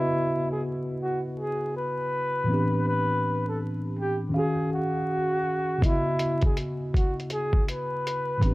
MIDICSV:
0, 0, Header, 1, 4, 480
1, 0, Start_track
1, 0, Tempo, 740741
1, 1851, Time_signature, 4, 2, 24, 8
1, 5535, End_track
2, 0, Start_track
2, 0, Title_t, "Flugelhorn"
2, 0, Program_c, 0, 56
2, 0, Note_on_c, 0, 64, 91
2, 303, Note_off_c, 0, 64, 0
2, 332, Note_on_c, 0, 68, 66
2, 408, Note_off_c, 0, 68, 0
2, 663, Note_on_c, 0, 66, 67
2, 793, Note_off_c, 0, 66, 0
2, 906, Note_on_c, 0, 68, 72
2, 1116, Note_off_c, 0, 68, 0
2, 1144, Note_on_c, 0, 71, 85
2, 1832, Note_off_c, 0, 71, 0
2, 1863, Note_on_c, 0, 71, 83
2, 2224, Note_off_c, 0, 71, 0
2, 2256, Note_on_c, 0, 69, 64
2, 2330, Note_off_c, 0, 69, 0
2, 2587, Note_on_c, 0, 67, 72
2, 2714, Note_off_c, 0, 67, 0
2, 2829, Note_on_c, 0, 68, 73
2, 3037, Note_off_c, 0, 68, 0
2, 3067, Note_on_c, 0, 66, 81
2, 3791, Note_on_c, 0, 64, 85
2, 3800, Note_off_c, 0, 66, 0
2, 4148, Note_off_c, 0, 64, 0
2, 4179, Note_on_c, 0, 68, 68
2, 4252, Note_off_c, 0, 68, 0
2, 4507, Note_on_c, 0, 66, 64
2, 4634, Note_off_c, 0, 66, 0
2, 4748, Note_on_c, 0, 68, 77
2, 4956, Note_off_c, 0, 68, 0
2, 4993, Note_on_c, 0, 71, 76
2, 5535, Note_off_c, 0, 71, 0
2, 5535, End_track
3, 0, Start_track
3, 0, Title_t, "Tine electric piano"
3, 0, Program_c, 1, 4
3, 0, Note_on_c, 1, 49, 49
3, 0, Note_on_c, 1, 59, 50
3, 0, Note_on_c, 1, 64, 48
3, 0, Note_on_c, 1, 66, 58
3, 0, Note_on_c, 1, 71, 67
3, 0, Note_on_c, 1, 75, 51
3, 45, Control_c, 1, 64, 127
3, 71, Note_off_c, 1, 71, 0
3, 1572, Note_off_c, 1, 49, 0
3, 1579, Note_off_c, 1, 59, 0
3, 1582, Note_on_c, 1, 45, 52
3, 1587, Note_off_c, 1, 75, 0
3, 1594, Note_off_c, 1, 64, 0
3, 1595, Note_on_c, 1, 52, 49
3, 1603, Note_off_c, 1, 66, 0
3, 1608, Note_on_c, 1, 59, 51
3, 1619, Note_on_c, 1, 60, 49
3, 1621, Control_c, 1, 64, 0
3, 1631, Note_on_c, 1, 62, 54
3, 1643, Note_on_c, 1, 67, 66
3, 1714, Control_c, 1, 64, 127
3, 2772, Note_off_c, 1, 45, 0
3, 2779, Note_off_c, 1, 52, 0
3, 2781, Note_on_c, 1, 51, 60
3, 2786, Note_off_c, 1, 59, 0
3, 2791, Note_off_c, 1, 60, 0
3, 2797, Note_off_c, 1, 62, 0
3, 2798, Note_on_c, 1, 61, 52
3, 2804, Note_off_c, 1, 67, 0
3, 2814, Note_on_c, 1, 77, 54
3, 2821, Control_c, 1, 64, 0
3, 2829, Note_on_c, 1, 66, 54
3, 2845, Note_on_c, 1, 68, 62
3, 2946, Control_c, 1, 64, 127
3, 3737, Note_off_c, 1, 51, 0
3, 3745, Note_off_c, 1, 61, 0
3, 3748, Note_on_c, 1, 49, 56
3, 3753, Note_off_c, 1, 77, 0
3, 3761, Note_off_c, 1, 66, 0
3, 3763, Note_on_c, 1, 59, 49
3, 3769, Note_off_c, 1, 68, 0
3, 3777, Note_on_c, 1, 75, 52
3, 3781, Control_c, 1, 64, 0
3, 3793, Note_on_c, 1, 64, 53
3, 3809, Note_on_c, 1, 66, 64
3, 3897, Control_c, 1, 64, 127
3, 5413, Note_off_c, 1, 49, 0
3, 5421, Note_off_c, 1, 59, 0
3, 5428, Note_off_c, 1, 75, 0
3, 5428, Note_on_c, 1, 45, 57
3, 5436, Note_off_c, 1, 64, 0
3, 5440, Note_on_c, 1, 52, 49
3, 5444, Note_off_c, 1, 66, 0
3, 5452, Note_on_c, 1, 59, 57
3, 5460, Control_c, 1, 64, 0
3, 5464, Note_on_c, 1, 60, 54
3, 5477, Note_on_c, 1, 62, 51
3, 5489, Note_on_c, 1, 67, 62
3, 5535, Note_off_c, 1, 45, 0
3, 5535, Note_off_c, 1, 52, 0
3, 5535, Note_off_c, 1, 59, 0
3, 5535, Note_off_c, 1, 60, 0
3, 5535, Note_off_c, 1, 62, 0
3, 5535, Note_off_c, 1, 67, 0
3, 5535, End_track
4, 0, Start_track
4, 0, Title_t, "Drums"
4, 3773, Note_on_c, 9, 36, 92
4, 3781, Note_on_c, 9, 42, 70
4, 3838, Note_off_c, 9, 36, 0
4, 3846, Note_off_c, 9, 42, 0
4, 4013, Note_on_c, 9, 42, 62
4, 4078, Note_off_c, 9, 42, 0
4, 4157, Note_on_c, 9, 42, 32
4, 4164, Note_on_c, 9, 36, 77
4, 4222, Note_off_c, 9, 42, 0
4, 4228, Note_off_c, 9, 36, 0
4, 4257, Note_on_c, 9, 42, 66
4, 4322, Note_off_c, 9, 42, 0
4, 4499, Note_on_c, 9, 36, 76
4, 4514, Note_on_c, 9, 42, 54
4, 4563, Note_off_c, 9, 36, 0
4, 4578, Note_off_c, 9, 42, 0
4, 4663, Note_on_c, 9, 42, 29
4, 4728, Note_off_c, 9, 42, 0
4, 4730, Note_on_c, 9, 42, 56
4, 4795, Note_off_c, 9, 42, 0
4, 4879, Note_on_c, 9, 36, 82
4, 4944, Note_off_c, 9, 36, 0
4, 4979, Note_on_c, 9, 42, 69
4, 5044, Note_off_c, 9, 42, 0
4, 5229, Note_on_c, 9, 42, 60
4, 5294, Note_off_c, 9, 42, 0
4, 5453, Note_on_c, 9, 36, 90
4, 5459, Note_on_c, 9, 42, 67
4, 5518, Note_off_c, 9, 36, 0
4, 5524, Note_off_c, 9, 42, 0
4, 5535, End_track
0, 0, End_of_file